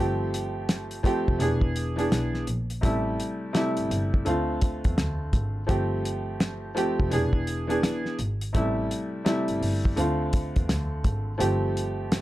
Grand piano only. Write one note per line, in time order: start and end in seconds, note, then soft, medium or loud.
0.00 0.97 F3 loud
0.00 0.97 A3 medium
0.00 0.98 C4 medium
0.00 0.98 G4 loud
1.03 1.40 F3 loud
1.03 1.40 A3 medium
1.03 1.40 C4 medium
1.03 1.41 G4 loud
1.39 1.92 E3 loud
1.39 1.93 B3 medium
1.39 1.93 D4 medium
1.39 1.94 G#4 loud
1.96 2.43 E3 loud
1.96 2.43 B3 medium
1.96 2.44 D4 medium
1.96 2.44 G#4 loud
2.81 3.49 C3 medium
2.81 3.50 G3 medium
2.81 3.50 A3 medium
2.81 3.51 E4 loud
3.53 4.25 C3 medium
3.53 4.26 G3 medium
3.53 4.24 A3 medium
3.53 4.27 E4 loud
4.25 5.60 D3 medium
4.25 5.60 A3 medium
4.25 5.61 C4 medium
4.25 5.61 F4 loud
5.67 6.68 F3 medium
5.67 6.69 A3 medium
5.67 6.69 C4 medium
5.67 6.70 G4 medium
6.75 7.11 F3 loud
6.75 7.11 A3 medium
6.75 7.12 C4 medium
6.75 7.12 G4 loud
7.10 7.64 E3 loud
7.10 7.64 B3 medium
7.10 7.65 D4 medium
7.10 7.65 G#4 loud
7.67 8.14 E3 loud
7.67 8.15 B3 medium
7.67 8.15 D4 medium
7.67 8.16 G#4 loud
8.53 9.21 C3 medium
8.53 9.21 G3 medium
8.53 9.22 A3 medium
8.53 9.22 E4 loud
9.25 9.97 C3 medium
9.25 9.97 G3 medium
9.25 9.96 A3 medium
9.25 9.98 E4 loud
9.96 11.31 D3 medium
9.96 11.32 A3 medium
9.96 11.32 C4 medium
9.96 11.33 F4 loud
11.38 12.21 F3 loud
11.38 12.21 A3 medium
11.38 12.21 C4 medium
11.38 12.21 G4 medium